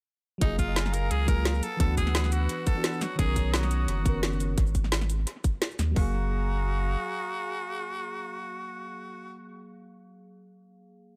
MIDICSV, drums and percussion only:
0, 0, Header, 1, 2, 480
1, 0, Start_track
1, 0, Key_signature, 6, "major"
1, 0, Tempo, 346821
1, 574, Time_signature, 4, 2, 24, 8
1, 15450, End_track
2, 0, Start_track
2, 0, Title_t, "Drums"
2, 573, Note_on_c, 9, 36, 119
2, 574, Note_on_c, 9, 42, 99
2, 712, Note_off_c, 9, 36, 0
2, 712, Note_off_c, 9, 42, 0
2, 812, Note_on_c, 9, 36, 59
2, 815, Note_on_c, 9, 42, 65
2, 815, Note_on_c, 9, 69, 59
2, 951, Note_off_c, 9, 36, 0
2, 954, Note_off_c, 9, 42, 0
2, 954, Note_off_c, 9, 69, 0
2, 1056, Note_on_c, 9, 38, 109
2, 1056, Note_on_c, 9, 42, 93
2, 1187, Note_on_c, 9, 40, 36
2, 1187, Note_on_c, 9, 69, 29
2, 1195, Note_off_c, 9, 38, 0
2, 1195, Note_off_c, 9, 42, 0
2, 1295, Note_off_c, 9, 69, 0
2, 1295, Note_on_c, 9, 42, 76
2, 1295, Note_on_c, 9, 69, 62
2, 1325, Note_off_c, 9, 40, 0
2, 1434, Note_off_c, 9, 42, 0
2, 1434, Note_off_c, 9, 69, 0
2, 1534, Note_on_c, 9, 42, 95
2, 1672, Note_off_c, 9, 42, 0
2, 1771, Note_on_c, 9, 36, 105
2, 1773, Note_on_c, 9, 42, 69
2, 1773, Note_on_c, 9, 69, 60
2, 1910, Note_off_c, 9, 36, 0
2, 1912, Note_off_c, 9, 42, 0
2, 1912, Note_off_c, 9, 69, 0
2, 2013, Note_on_c, 9, 38, 114
2, 2013, Note_on_c, 9, 42, 98
2, 2140, Note_on_c, 9, 69, 26
2, 2151, Note_off_c, 9, 38, 0
2, 2151, Note_off_c, 9, 42, 0
2, 2254, Note_off_c, 9, 69, 0
2, 2254, Note_on_c, 9, 42, 72
2, 2254, Note_on_c, 9, 69, 61
2, 2392, Note_off_c, 9, 42, 0
2, 2392, Note_off_c, 9, 69, 0
2, 2491, Note_on_c, 9, 36, 127
2, 2492, Note_on_c, 9, 42, 102
2, 2629, Note_off_c, 9, 36, 0
2, 2630, Note_off_c, 9, 42, 0
2, 2731, Note_on_c, 9, 36, 63
2, 2733, Note_on_c, 9, 42, 64
2, 2733, Note_on_c, 9, 69, 58
2, 2862, Note_on_c, 9, 40, 34
2, 2869, Note_off_c, 9, 36, 0
2, 2872, Note_off_c, 9, 42, 0
2, 2872, Note_off_c, 9, 69, 0
2, 2973, Note_on_c, 9, 38, 118
2, 2973, Note_on_c, 9, 42, 86
2, 3001, Note_off_c, 9, 40, 0
2, 3099, Note_on_c, 9, 40, 37
2, 3099, Note_on_c, 9, 69, 27
2, 3112, Note_off_c, 9, 38, 0
2, 3112, Note_off_c, 9, 42, 0
2, 3211, Note_off_c, 9, 69, 0
2, 3211, Note_on_c, 9, 42, 71
2, 3211, Note_on_c, 9, 69, 63
2, 3238, Note_off_c, 9, 40, 0
2, 3349, Note_off_c, 9, 42, 0
2, 3349, Note_off_c, 9, 69, 0
2, 3451, Note_on_c, 9, 42, 91
2, 3589, Note_off_c, 9, 42, 0
2, 3689, Note_on_c, 9, 42, 67
2, 3689, Note_on_c, 9, 69, 61
2, 3692, Note_on_c, 9, 36, 109
2, 3828, Note_off_c, 9, 42, 0
2, 3828, Note_off_c, 9, 69, 0
2, 3830, Note_off_c, 9, 36, 0
2, 3930, Note_on_c, 9, 38, 118
2, 3930, Note_on_c, 9, 42, 95
2, 4060, Note_on_c, 9, 69, 28
2, 4069, Note_off_c, 9, 38, 0
2, 4069, Note_off_c, 9, 42, 0
2, 4172, Note_off_c, 9, 69, 0
2, 4172, Note_on_c, 9, 40, 54
2, 4172, Note_on_c, 9, 42, 65
2, 4172, Note_on_c, 9, 69, 60
2, 4310, Note_off_c, 9, 40, 0
2, 4310, Note_off_c, 9, 42, 0
2, 4310, Note_off_c, 9, 69, 0
2, 4413, Note_on_c, 9, 36, 127
2, 4413, Note_on_c, 9, 42, 98
2, 4551, Note_off_c, 9, 36, 0
2, 4552, Note_off_c, 9, 42, 0
2, 4653, Note_on_c, 9, 36, 65
2, 4653, Note_on_c, 9, 42, 65
2, 4653, Note_on_c, 9, 69, 57
2, 4791, Note_off_c, 9, 36, 0
2, 4791, Note_off_c, 9, 42, 0
2, 4791, Note_off_c, 9, 69, 0
2, 4894, Note_on_c, 9, 38, 121
2, 4894, Note_on_c, 9, 42, 90
2, 5024, Note_on_c, 9, 40, 38
2, 5024, Note_on_c, 9, 69, 28
2, 5032, Note_off_c, 9, 38, 0
2, 5032, Note_off_c, 9, 42, 0
2, 5133, Note_off_c, 9, 69, 0
2, 5133, Note_on_c, 9, 42, 68
2, 5133, Note_on_c, 9, 69, 60
2, 5163, Note_off_c, 9, 40, 0
2, 5272, Note_off_c, 9, 42, 0
2, 5272, Note_off_c, 9, 69, 0
2, 5374, Note_on_c, 9, 42, 92
2, 5513, Note_off_c, 9, 42, 0
2, 5613, Note_on_c, 9, 36, 113
2, 5617, Note_on_c, 9, 42, 69
2, 5617, Note_on_c, 9, 69, 61
2, 5751, Note_off_c, 9, 36, 0
2, 5755, Note_off_c, 9, 42, 0
2, 5755, Note_off_c, 9, 69, 0
2, 5854, Note_on_c, 9, 38, 127
2, 5854, Note_on_c, 9, 42, 91
2, 5985, Note_on_c, 9, 69, 27
2, 5993, Note_off_c, 9, 38, 0
2, 5993, Note_off_c, 9, 42, 0
2, 6095, Note_off_c, 9, 69, 0
2, 6095, Note_on_c, 9, 42, 64
2, 6095, Note_on_c, 9, 69, 61
2, 6233, Note_off_c, 9, 42, 0
2, 6233, Note_off_c, 9, 69, 0
2, 6333, Note_on_c, 9, 36, 127
2, 6333, Note_on_c, 9, 42, 93
2, 6460, Note_on_c, 9, 69, 28
2, 6472, Note_off_c, 9, 36, 0
2, 6472, Note_off_c, 9, 42, 0
2, 6572, Note_off_c, 9, 69, 0
2, 6572, Note_on_c, 9, 42, 61
2, 6572, Note_on_c, 9, 69, 59
2, 6573, Note_on_c, 9, 36, 63
2, 6703, Note_on_c, 9, 40, 31
2, 6711, Note_off_c, 9, 36, 0
2, 6711, Note_off_c, 9, 42, 0
2, 6711, Note_off_c, 9, 69, 0
2, 6810, Note_on_c, 9, 38, 123
2, 6810, Note_on_c, 9, 42, 88
2, 6841, Note_off_c, 9, 40, 0
2, 6940, Note_on_c, 9, 40, 36
2, 6940, Note_on_c, 9, 69, 26
2, 6948, Note_off_c, 9, 38, 0
2, 6948, Note_off_c, 9, 42, 0
2, 7053, Note_off_c, 9, 69, 0
2, 7053, Note_on_c, 9, 42, 69
2, 7053, Note_on_c, 9, 69, 62
2, 7078, Note_off_c, 9, 40, 0
2, 7192, Note_off_c, 9, 42, 0
2, 7192, Note_off_c, 9, 69, 0
2, 7292, Note_on_c, 9, 42, 94
2, 7431, Note_off_c, 9, 42, 0
2, 7533, Note_on_c, 9, 36, 108
2, 7534, Note_on_c, 9, 42, 65
2, 7534, Note_on_c, 9, 69, 60
2, 7672, Note_off_c, 9, 36, 0
2, 7672, Note_off_c, 9, 42, 0
2, 7672, Note_off_c, 9, 69, 0
2, 7774, Note_on_c, 9, 38, 122
2, 7774, Note_on_c, 9, 42, 89
2, 7902, Note_on_c, 9, 69, 27
2, 7912, Note_off_c, 9, 38, 0
2, 7912, Note_off_c, 9, 42, 0
2, 8014, Note_off_c, 9, 69, 0
2, 8014, Note_on_c, 9, 40, 49
2, 8014, Note_on_c, 9, 42, 63
2, 8014, Note_on_c, 9, 69, 60
2, 8153, Note_off_c, 9, 40, 0
2, 8153, Note_off_c, 9, 42, 0
2, 8153, Note_off_c, 9, 69, 0
2, 8253, Note_on_c, 9, 36, 107
2, 8254, Note_on_c, 9, 46, 91
2, 8392, Note_off_c, 9, 36, 0
2, 8392, Note_off_c, 9, 46, 0
2, 15450, End_track
0, 0, End_of_file